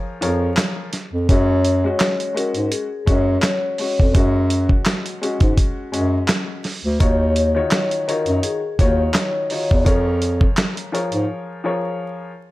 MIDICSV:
0, 0, Header, 1, 5, 480
1, 0, Start_track
1, 0, Key_signature, 6, "major"
1, 0, Tempo, 714286
1, 868, Time_signature, 4, 2, 24, 8
1, 8409, End_track
2, 0, Start_track
2, 0, Title_t, "Vibraphone"
2, 0, Program_c, 0, 11
2, 866, Note_on_c, 0, 73, 96
2, 1560, Note_off_c, 0, 73, 0
2, 1583, Note_on_c, 0, 70, 79
2, 1801, Note_off_c, 0, 70, 0
2, 1824, Note_on_c, 0, 68, 81
2, 2042, Note_off_c, 0, 68, 0
2, 2072, Note_on_c, 0, 73, 81
2, 2763, Note_off_c, 0, 73, 0
2, 4709, Note_on_c, 0, 73, 95
2, 5401, Note_off_c, 0, 73, 0
2, 5430, Note_on_c, 0, 70, 87
2, 5645, Note_off_c, 0, 70, 0
2, 5668, Note_on_c, 0, 68, 82
2, 5884, Note_off_c, 0, 68, 0
2, 5910, Note_on_c, 0, 73, 81
2, 6602, Note_off_c, 0, 73, 0
2, 8409, End_track
3, 0, Start_track
3, 0, Title_t, "Grand piano"
3, 0, Program_c, 1, 0
3, 0, Note_on_c, 1, 53, 87
3, 0, Note_on_c, 1, 65, 86
3, 0, Note_on_c, 1, 68, 80
3, 0, Note_on_c, 1, 70, 83
3, 0, Note_on_c, 1, 73, 100
3, 109, Note_off_c, 1, 53, 0
3, 110, Note_off_c, 1, 65, 0
3, 112, Note_off_c, 1, 68, 0
3, 114, Note_off_c, 1, 70, 0
3, 115, Note_off_c, 1, 73, 0
3, 140, Note_on_c, 1, 53, 92
3, 144, Note_on_c, 1, 65, 87
3, 147, Note_on_c, 1, 68, 84
3, 151, Note_on_c, 1, 70, 87
3, 153, Note_on_c, 1, 73, 98
3, 589, Note_off_c, 1, 53, 0
3, 591, Note_off_c, 1, 65, 0
3, 592, Note_off_c, 1, 68, 0
3, 594, Note_off_c, 1, 70, 0
3, 595, Note_off_c, 1, 73, 0
3, 866, Note_on_c, 1, 56, 93
3, 873, Note_on_c, 1, 61, 84
3, 879, Note_on_c, 1, 66, 106
3, 1206, Note_off_c, 1, 56, 0
3, 1209, Note_off_c, 1, 61, 0
3, 1213, Note_off_c, 1, 66, 0
3, 1235, Note_on_c, 1, 56, 99
3, 1242, Note_on_c, 1, 61, 81
3, 1249, Note_on_c, 1, 66, 104
3, 1560, Note_off_c, 1, 56, 0
3, 1563, Note_off_c, 1, 61, 0
3, 1567, Note_off_c, 1, 66, 0
3, 1574, Note_on_c, 1, 56, 87
3, 1581, Note_on_c, 1, 61, 79
3, 1588, Note_on_c, 1, 66, 102
3, 1920, Note_off_c, 1, 56, 0
3, 1923, Note_off_c, 1, 61, 0
3, 1927, Note_off_c, 1, 66, 0
3, 2058, Note_on_c, 1, 56, 101
3, 2065, Note_on_c, 1, 61, 90
3, 2071, Note_on_c, 1, 66, 103
3, 2508, Note_off_c, 1, 56, 0
3, 2511, Note_off_c, 1, 61, 0
3, 2514, Note_off_c, 1, 66, 0
3, 2547, Note_on_c, 1, 56, 76
3, 2553, Note_on_c, 1, 61, 72
3, 2560, Note_on_c, 1, 66, 83
3, 2770, Note_off_c, 1, 56, 0
3, 2773, Note_off_c, 1, 61, 0
3, 2777, Note_off_c, 1, 66, 0
3, 2780, Note_on_c, 1, 56, 89
3, 2787, Note_on_c, 1, 61, 81
3, 2793, Note_on_c, 1, 66, 103
3, 3451, Note_off_c, 1, 56, 0
3, 3454, Note_off_c, 1, 61, 0
3, 3458, Note_off_c, 1, 66, 0
3, 3504, Note_on_c, 1, 56, 97
3, 3511, Note_on_c, 1, 61, 88
3, 3518, Note_on_c, 1, 66, 100
3, 3951, Note_off_c, 1, 56, 0
3, 3954, Note_off_c, 1, 61, 0
3, 3958, Note_off_c, 1, 66, 0
3, 3978, Note_on_c, 1, 56, 92
3, 3984, Note_on_c, 1, 61, 90
3, 3991, Note_on_c, 1, 66, 90
3, 4428, Note_off_c, 1, 56, 0
3, 4431, Note_off_c, 1, 61, 0
3, 4434, Note_off_c, 1, 66, 0
3, 4702, Note_on_c, 1, 51, 89
3, 4705, Note_on_c, 1, 63, 84
3, 4708, Note_on_c, 1, 65, 77
3, 4712, Note_on_c, 1, 66, 79
3, 4715, Note_on_c, 1, 73, 104
3, 5044, Note_off_c, 1, 51, 0
3, 5045, Note_off_c, 1, 63, 0
3, 5047, Note_off_c, 1, 65, 0
3, 5049, Note_off_c, 1, 66, 0
3, 5050, Note_off_c, 1, 73, 0
3, 5070, Note_on_c, 1, 51, 94
3, 5074, Note_on_c, 1, 63, 85
3, 5077, Note_on_c, 1, 65, 87
3, 5081, Note_on_c, 1, 66, 91
3, 5084, Note_on_c, 1, 73, 107
3, 5398, Note_off_c, 1, 51, 0
3, 5399, Note_off_c, 1, 63, 0
3, 5401, Note_off_c, 1, 65, 0
3, 5403, Note_off_c, 1, 66, 0
3, 5404, Note_off_c, 1, 73, 0
3, 5426, Note_on_c, 1, 51, 95
3, 5430, Note_on_c, 1, 63, 81
3, 5433, Note_on_c, 1, 65, 83
3, 5437, Note_on_c, 1, 66, 82
3, 5440, Note_on_c, 1, 73, 104
3, 5766, Note_off_c, 1, 51, 0
3, 5768, Note_off_c, 1, 63, 0
3, 5770, Note_off_c, 1, 65, 0
3, 5771, Note_off_c, 1, 66, 0
3, 5773, Note_off_c, 1, 73, 0
3, 5906, Note_on_c, 1, 51, 95
3, 5909, Note_on_c, 1, 63, 85
3, 5913, Note_on_c, 1, 65, 86
3, 5916, Note_on_c, 1, 66, 89
3, 5919, Note_on_c, 1, 73, 104
3, 6352, Note_off_c, 1, 51, 0
3, 6353, Note_off_c, 1, 63, 0
3, 6355, Note_off_c, 1, 65, 0
3, 6357, Note_off_c, 1, 66, 0
3, 6358, Note_off_c, 1, 73, 0
3, 6388, Note_on_c, 1, 51, 74
3, 6392, Note_on_c, 1, 63, 65
3, 6395, Note_on_c, 1, 65, 68
3, 6399, Note_on_c, 1, 66, 69
3, 6402, Note_on_c, 1, 73, 83
3, 6610, Note_off_c, 1, 65, 0
3, 6611, Note_off_c, 1, 51, 0
3, 6612, Note_off_c, 1, 63, 0
3, 6616, Note_off_c, 1, 66, 0
3, 6617, Note_off_c, 1, 73, 0
3, 6617, Note_on_c, 1, 53, 85
3, 6620, Note_on_c, 1, 65, 84
3, 6624, Note_on_c, 1, 68, 82
3, 6627, Note_on_c, 1, 70, 84
3, 6630, Note_on_c, 1, 73, 104
3, 7290, Note_off_c, 1, 53, 0
3, 7291, Note_off_c, 1, 65, 0
3, 7293, Note_off_c, 1, 68, 0
3, 7294, Note_off_c, 1, 70, 0
3, 7296, Note_off_c, 1, 73, 0
3, 7339, Note_on_c, 1, 53, 88
3, 7343, Note_on_c, 1, 65, 85
3, 7346, Note_on_c, 1, 68, 81
3, 7349, Note_on_c, 1, 70, 84
3, 7353, Note_on_c, 1, 73, 99
3, 7788, Note_off_c, 1, 53, 0
3, 7790, Note_off_c, 1, 65, 0
3, 7792, Note_off_c, 1, 68, 0
3, 7793, Note_off_c, 1, 70, 0
3, 7795, Note_off_c, 1, 73, 0
3, 7821, Note_on_c, 1, 53, 90
3, 7824, Note_on_c, 1, 65, 90
3, 7827, Note_on_c, 1, 68, 89
3, 7831, Note_on_c, 1, 70, 86
3, 7834, Note_on_c, 1, 73, 99
3, 8269, Note_off_c, 1, 53, 0
3, 8271, Note_off_c, 1, 65, 0
3, 8272, Note_off_c, 1, 68, 0
3, 8274, Note_off_c, 1, 70, 0
3, 8276, Note_off_c, 1, 73, 0
3, 8409, End_track
4, 0, Start_track
4, 0, Title_t, "Bass clarinet"
4, 0, Program_c, 2, 71
4, 149, Note_on_c, 2, 41, 86
4, 350, Note_off_c, 2, 41, 0
4, 759, Note_on_c, 2, 41, 86
4, 851, Note_off_c, 2, 41, 0
4, 868, Note_on_c, 2, 42, 109
4, 1270, Note_off_c, 2, 42, 0
4, 1720, Note_on_c, 2, 44, 79
4, 1811, Note_off_c, 2, 44, 0
4, 2068, Note_on_c, 2, 42, 96
4, 2269, Note_off_c, 2, 42, 0
4, 2686, Note_on_c, 2, 41, 82
4, 2775, Note_off_c, 2, 41, 0
4, 2788, Note_on_c, 2, 42, 103
4, 3190, Note_off_c, 2, 42, 0
4, 3635, Note_on_c, 2, 44, 83
4, 3728, Note_off_c, 2, 44, 0
4, 3990, Note_on_c, 2, 42, 92
4, 4190, Note_off_c, 2, 42, 0
4, 4601, Note_on_c, 2, 38, 95
4, 4691, Note_off_c, 2, 38, 0
4, 4709, Note_on_c, 2, 39, 100
4, 5110, Note_off_c, 2, 39, 0
4, 5560, Note_on_c, 2, 42, 83
4, 5651, Note_off_c, 2, 42, 0
4, 5908, Note_on_c, 2, 39, 93
4, 6109, Note_off_c, 2, 39, 0
4, 6527, Note_on_c, 2, 40, 85
4, 6615, Note_off_c, 2, 40, 0
4, 6630, Note_on_c, 2, 41, 106
4, 7031, Note_off_c, 2, 41, 0
4, 7481, Note_on_c, 2, 44, 88
4, 7572, Note_off_c, 2, 44, 0
4, 8409, End_track
5, 0, Start_track
5, 0, Title_t, "Drums"
5, 149, Note_on_c, 9, 42, 77
5, 216, Note_off_c, 9, 42, 0
5, 381, Note_on_c, 9, 39, 91
5, 387, Note_on_c, 9, 38, 114
5, 387, Note_on_c, 9, 42, 111
5, 449, Note_off_c, 9, 39, 0
5, 454, Note_off_c, 9, 38, 0
5, 454, Note_off_c, 9, 42, 0
5, 623, Note_on_c, 9, 42, 79
5, 628, Note_on_c, 9, 38, 32
5, 690, Note_off_c, 9, 42, 0
5, 695, Note_off_c, 9, 38, 0
5, 867, Note_on_c, 9, 36, 111
5, 867, Note_on_c, 9, 42, 92
5, 934, Note_off_c, 9, 36, 0
5, 934, Note_off_c, 9, 42, 0
5, 1106, Note_on_c, 9, 42, 83
5, 1173, Note_off_c, 9, 42, 0
5, 1343, Note_on_c, 9, 39, 89
5, 1343, Note_on_c, 9, 42, 92
5, 1349, Note_on_c, 9, 38, 113
5, 1410, Note_off_c, 9, 42, 0
5, 1411, Note_off_c, 9, 39, 0
5, 1416, Note_off_c, 9, 38, 0
5, 1478, Note_on_c, 9, 42, 56
5, 1545, Note_off_c, 9, 42, 0
5, 1594, Note_on_c, 9, 42, 67
5, 1662, Note_off_c, 9, 42, 0
5, 1710, Note_on_c, 9, 42, 49
5, 1777, Note_off_c, 9, 42, 0
5, 1826, Note_on_c, 9, 42, 106
5, 1893, Note_off_c, 9, 42, 0
5, 2066, Note_on_c, 9, 36, 99
5, 2068, Note_on_c, 9, 42, 76
5, 2133, Note_off_c, 9, 36, 0
5, 2135, Note_off_c, 9, 42, 0
5, 2300, Note_on_c, 9, 39, 92
5, 2306, Note_on_c, 9, 38, 117
5, 2306, Note_on_c, 9, 42, 113
5, 2368, Note_off_c, 9, 39, 0
5, 2373, Note_off_c, 9, 38, 0
5, 2373, Note_off_c, 9, 42, 0
5, 2543, Note_on_c, 9, 46, 57
5, 2610, Note_off_c, 9, 46, 0
5, 2685, Note_on_c, 9, 36, 97
5, 2752, Note_off_c, 9, 36, 0
5, 2786, Note_on_c, 9, 42, 89
5, 2787, Note_on_c, 9, 36, 110
5, 2853, Note_off_c, 9, 42, 0
5, 2854, Note_off_c, 9, 36, 0
5, 3026, Note_on_c, 9, 42, 83
5, 3093, Note_off_c, 9, 42, 0
5, 3154, Note_on_c, 9, 36, 103
5, 3222, Note_off_c, 9, 36, 0
5, 3263, Note_on_c, 9, 39, 89
5, 3263, Note_on_c, 9, 42, 94
5, 3268, Note_on_c, 9, 38, 111
5, 3330, Note_off_c, 9, 39, 0
5, 3330, Note_off_c, 9, 42, 0
5, 3336, Note_off_c, 9, 38, 0
5, 3398, Note_on_c, 9, 42, 58
5, 3465, Note_off_c, 9, 42, 0
5, 3515, Note_on_c, 9, 42, 64
5, 3582, Note_off_c, 9, 42, 0
5, 3631, Note_on_c, 9, 42, 49
5, 3634, Note_on_c, 9, 36, 89
5, 3699, Note_off_c, 9, 42, 0
5, 3702, Note_off_c, 9, 36, 0
5, 3746, Note_on_c, 9, 36, 99
5, 3746, Note_on_c, 9, 42, 107
5, 3813, Note_off_c, 9, 36, 0
5, 3814, Note_off_c, 9, 42, 0
5, 3989, Note_on_c, 9, 42, 77
5, 4056, Note_off_c, 9, 42, 0
5, 4221, Note_on_c, 9, 39, 90
5, 4226, Note_on_c, 9, 38, 120
5, 4226, Note_on_c, 9, 42, 109
5, 4288, Note_off_c, 9, 39, 0
5, 4293, Note_off_c, 9, 38, 0
5, 4294, Note_off_c, 9, 42, 0
5, 4463, Note_on_c, 9, 46, 55
5, 4468, Note_on_c, 9, 38, 32
5, 4530, Note_off_c, 9, 46, 0
5, 4535, Note_off_c, 9, 38, 0
5, 4706, Note_on_c, 9, 42, 90
5, 4708, Note_on_c, 9, 36, 107
5, 4774, Note_off_c, 9, 42, 0
5, 4775, Note_off_c, 9, 36, 0
5, 4945, Note_on_c, 9, 42, 82
5, 5012, Note_off_c, 9, 42, 0
5, 5182, Note_on_c, 9, 42, 93
5, 5183, Note_on_c, 9, 39, 87
5, 5188, Note_on_c, 9, 38, 113
5, 5250, Note_off_c, 9, 39, 0
5, 5250, Note_off_c, 9, 42, 0
5, 5255, Note_off_c, 9, 38, 0
5, 5318, Note_on_c, 9, 42, 57
5, 5385, Note_off_c, 9, 42, 0
5, 5434, Note_on_c, 9, 42, 67
5, 5501, Note_off_c, 9, 42, 0
5, 5551, Note_on_c, 9, 42, 47
5, 5618, Note_off_c, 9, 42, 0
5, 5666, Note_on_c, 9, 42, 103
5, 5733, Note_off_c, 9, 42, 0
5, 5907, Note_on_c, 9, 36, 100
5, 5909, Note_on_c, 9, 42, 77
5, 5974, Note_off_c, 9, 36, 0
5, 5976, Note_off_c, 9, 42, 0
5, 6142, Note_on_c, 9, 39, 93
5, 6147, Note_on_c, 9, 38, 112
5, 6147, Note_on_c, 9, 42, 110
5, 6209, Note_off_c, 9, 39, 0
5, 6214, Note_off_c, 9, 38, 0
5, 6214, Note_off_c, 9, 42, 0
5, 6384, Note_on_c, 9, 46, 53
5, 6451, Note_off_c, 9, 46, 0
5, 6526, Note_on_c, 9, 36, 94
5, 6593, Note_off_c, 9, 36, 0
5, 6627, Note_on_c, 9, 42, 91
5, 6628, Note_on_c, 9, 36, 109
5, 6694, Note_off_c, 9, 42, 0
5, 6695, Note_off_c, 9, 36, 0
5, 6866, Note_on_c, 9, 42, 84
5, 6933, Note_off_c, 9, 42, 0
5, 6995, Note_on_c, 9, 36, 102
5, 7062, Note_off_c, 9, 36, 0
5, 7104, Note_on_c, 9, 39, 90
5, 7104, Note_on_c, 9, 42, 93
5, 7110, Note_on_c, 9, 38, 107
5, 7171, Note_off_c, 9, 39, 0
5, 7171, Note_off_c, 9, 42, 0
5, 7177, Note_off_c, 9, 38, 0
5, 7239, Note_on_c, 9, 42, 57
5, 7306, Note_off_c, 9, 42, 0
5, 7356, Note_on_c, 9, 42, 64
5, 7423, Note_off_c, 9, 42, 0
5, 7472, Note_on_c, 9, 42, 49
5, 7539, Note_off_c, 9, 42, 0
5, 8409, End_track
0, 0, End_of_file